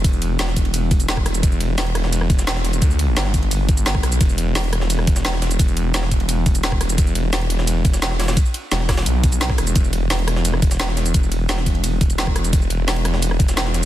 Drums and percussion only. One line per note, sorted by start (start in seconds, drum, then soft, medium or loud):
0.04 kick loud
0.04 closed hi-hat loud
0.04 ride medium
0.04 shaker soft
0.13 shaker soft
0.22 closed hi-hat medium
0.22 ride medium
0.39 snare loud
0.39 closed hi-hat loud
0.39 ride medium
0.39 shaker soft
0.48 snare medium
0.56 kick medium
0.56 closed hi-hat medium
0.56 ride medium
0.56 shaker soft
0.65 ride soft
0.74 closed hi-hat medium
0.74 ride medium
0.74 shaker soft
0.91 kick loud
0.91 closed hi-hat medium
0.91 ride medium
0.91 shaker soft
1.00 closed hi-hat soft
1.00 shaker medium
1.08 snare loud
1.08 closed hi-hat medium
1.08 ride medium
1.08 shaker soft
1.17 kick medium
1.17 cross-stick soft
1.26 cross-stick medium
1.26 closed hi-hat medium
1.26 ride medium
1.26 shaker soft
1.35 closed hi-hat soft
1.35 shaker medium
1.43 kick loud
1.43 closed hi-hat medium
1.43 ride medium
1.43 shaker soft
1.52 shaker soft
1.60 closed hi-hat medium
1.60 ride medium
1.78 snare loud
1.78 closed hi-hat medium
1.78 open hi-hat medium
1.78 shaker soft
1.86 ride soft
1.95 cross-stick medium
1.95 closed hi-hat medium
1.95 ride medium
2.04 snare soft
2.12 closed hi-hat medium
2.12 ride medium
2.12 shaker soft
2.21 cross-stick soft
2.30 kick loud
2.30 closed hi-hat medium
2.30 ride medium
2.30 shaker soft
2.39 snare soft
2.39 closed hi-hat soft
2.39 shaker medium
2.47 snare loud
2.47 closed hi-hat medium
2.47 ride medium
2.47 shaker soft
2.56 snare medium
2.65 snare soft
2.65 closed hi-hat medium
2.65 ride medium
2.65 shaker soft
2.73 closed hi-hat soft
2.73 shaker medium
2.82 kick loud
2.82 closed hi-hat medium
2.82 ride medium
2.82 shaker soft
2.91 shaker soft
2.99 closed hi-hat medium
2.99 ride medium
3.17 snare loud
3.17 closed hi-hat medium
3.17 ride medium
3.17 shaker soft
3.25 snare medium
3.34 kick medium
3.34 closed hi-hat medium
3.34 ride medium
3.34 shaker soft
3.43 ride soft
3.51 closed hi-hat medium
3.51 ride medium
3.51 shaker soft
3.69 kick loud
3.69 closed hi-hat medium
3.69 ride medium
3.69 shaker soft
3.77 closed hi-hat soft
3.77 shaker medium
3.86 snare loud
3.86 closed hi-hat medium
3.86 ride medium
3.86 shaker soft
3.95 kick medium
3.95 cross-stick soft
4.03 cross-stick medium
4.03 closed hi-hat medium
4.03 ride medium
4.03 shaker soft
4.12 closed hi-hat soft
4.12 shaker medium
4.21 kick loud
4.21 closed hi-hat medium
4.21 ride medium
4.21 shaker medium
4.29 shaker soft
4.38 closed hi-hat medium
4.38 ride medium
4.55 snare loud
4.55 closed hi-hat medium
4.55 open hi-hat medium
4.55 shaker soft
4.64 ride soft
4.73 cross-stick medium
4.73 closed hi-hat medium
4.73 ride medium
4.81 snare soft
4.90 closed hi-hat medium
4.90 ride medium
4.90 shaker soft
4.99 cross-stick soft
5.07 kick loud
5.07 closed hi-hat medium
5.07 ride medium
5.07 shaker soft
5.16 snare medium
5.16 closed hi-hat soft
5.16 shaker medium
5.25 snare loud
5.25 closed hi-hat medium
5.25 ride medium
5.25 shaker soft
5.33 snare medium
5.42 snare soft
5.42 closed hi-hat medium
5.42 ride medium
5.42 shaker soft
5.51 closed hi-hat soft
5.51 shaker medium
5.59 kick loud
5.59 closed hi-hat medium
5.59 ride medium
5.59 shaker medium
5.68 shaker soft
5.77 closed hi-hat medium
5.77 ride medium
5.94 snare loud
5.94 closed hi-hat medium
5.94 ride medium
5.94 shaker medium
6.03 snare medium
6.11 kick medium
6.11 closed hi-hat medium
6.11 ride medium
6.11 shaker soft
6.20 ride soft
6.29 closed hi-hat medium
6.29 ride medium
6.29 shaker medium
6.46 kick loud
6.46 closed hi-hat medium
6.46 ride medium
6.46 shaker soft
6.55 closed hi-hat soft
6.55 shaker medium
6.63 snare loud
6.63 closed hi-hat medium
6.63 ride medium
6.63 shaker medium
6.72 kick medium
6.72 cross-stick soft
6.81 cross-stick medium
6.81 closed hi-hat medium
6.81 ride medium
6.81 shaker soft
6.89 closed hi-hat soft
6.89 shaker medium
6.98 kick loud
6.98 closed hi-hat loud
6.98 ride medium
6.98 shaker medium
7.07 shaker soft
7.15 closed hi-hat medium
7.15 ride medium
7.33 snare loud
7.33 closed hi-hat loud
7.33 open hi-hat medium
7.33 shaker medium
7.41 ride soft
7.50 closed hi-hat medium
7.50 ride medium
7.59 snare soft
7.67 closed hi-hat loud
7.67 ride medium
7.67 shaker medium
7.85 kick loud
7.85 closed hi-hat medium
7.85 ride medium
7.85 shaker soft
7.93 snare medium
7.93 closed hi-hat soft
7.93 shaker medium
8.02 snare loud
8.02 closed hi-hat loud
8.02 ride medium
8.02 shaker medium
8.11 snare medium
8.20 snare loud
8.20 closed hi-hat medium
8.20 open hi-hat medium
8.20 shaker soft
8.28 snare loud
8.28 closed hi-hat soft
8.28 open hi-hat medium
8.28 shaker medium
8.37 kick loud
8.37 closed hi-hat loud
8.37 ride medium
8.37 shaker medium
8.46 shaker soft
8.54 closed hi-hat medium
8.54 ride medium
8.72 snare loud
8.72 closed hi-hat loud
8.72 ride medium
8.72 shaker medium
8.80 snare medium
8.89 kick medium
8.89 cross-stick medium
8.89 snare loud
8.89 closed hi-hat medium
8.89 open hi-hat medium
8.89 shaker soft
8.97 snare loud
8.97 closed hi-hat soft
8.97 open hi-hat medium
9.06 closed hi-hat medium
9.06 ride medium
9.06 shaker medium
9.23 kick loud
9.23 closed hi-hat medium
9.23 ride medium
9.23 shaker soft
9.32 closed hi-hat soft
9.32 shaker medium
9.41 snare loud
9.41 closed hi-hat loud
9.41 ride medium
9.41 shaker medium
9.50 kick medium
9.50 cross-stick soft
9.50 snare soft
9.58 cross-stick medium
9.58 closed hi-hat medium
9.58 ride medium
9.58 shaker soft
9.67 closed hi-hat soft
9.67 shaker medium
9.75 kick loud
9.75 closed hi-hat loud
9.75 ride medium
9.75 shaker soft
9.84 shaker soft
9.93 closed hi-hat medium
9.93 ride medium
10.10 snare loud
10.10 closed hi-hat loud
10.10 open hi-hat medium
10.10 shaker medium
10.19 ride soft
10.28 cross-stick medium
10.28 closed hi-hat medium
10.28 ride medium
10.36 snare soft
10.45 closed hi-hat loud
10.45 ride medium
10.45 shaker medium
10.54 cross-stick soft
10.62 kick loud
10.62 closed hi-hat medium
10.62 ride medium
10.62 shaker soft
10.71 snare soft
10.71 closed hi-hat soft
10.71 shaker medium
10.80 snare loud
10.80 closed hi-hat loud
10.80 ride medium
10.80 shaker medium
10.88 snare medium
10.97 snare soft
10.97 closed hi-hat medium
10.97 ride medium
10.97 shaker soft
11.06 closed hi-hat soft
11.06 shaker medium
11.14 kick loud
11.14 closed hi-hat loud
11.14 ride medium
11.14 shaker soft
11.23 shaker soft
11.32 closed hi-hat medium
11.32 ride medium
11.49 snare loud
11.49 closed hi-hat medium
11.49 ride medium
11.49 shaker soft
11.58 snare medium
11.66 kick medium
11.66 closed hi-hat medium
11.66 ride medium
11.66 shaker soft
11.75 ride soft
11.84 closed hi-hat medium
11.84 ride medium
11.84 shaker soft
12.01 kick loud
12.01 closed hi-hat medium
12.01 ride medium
12.01 shaker soft
12.10 closed hi-hat soft
12.10 shaker medium
12.18 snare loud
12.18 closed hi-hat loud
12.18 ride medium
12.18 shaker soft
12.27 kick medium
12.27 cross-stick soft
12.36 cross-stick medium
12.36 closed hi-hat medium
12.36 ride medium
12.36 shaker soft
12.44 closed hi-hat soft
12.44 shaker medium
12.53 kick loud
12.53 closed hi-hat medium
12.53 ride medium
12.53 shaker soft
12.62 shaker soft
12.70 closed hi-hat medium
12.70 ride medium
12.88 snare loud
12.88 closed hi-hat medium
12.88 open hi-hat medium
12.88 shaker soft
12.96 ride soft
13.05 cross-stick medium
13.05 closed hi-hat medium
13.05 ride medium
13.14 snare soft
13.22 closed hi-hat medium
13.22 ride medium
13.22 shaker soft
13.31 cross-stick soft
13.40 kick loud
13.40 closed hi-hat medium
13.40 ride medium
13.40 shaker soft
13.48 snare medium
13.48 closed hi-hat soft
13.48 shaker medium
13.57 snare loud
13.57 closed hi-hat medium
13.57 ride medium
13.57 shaker soft
13.66 snare medium
13.74 snare soft
13.74 closed hi-hat medium
13.74 ride medium
13.74 shaker soft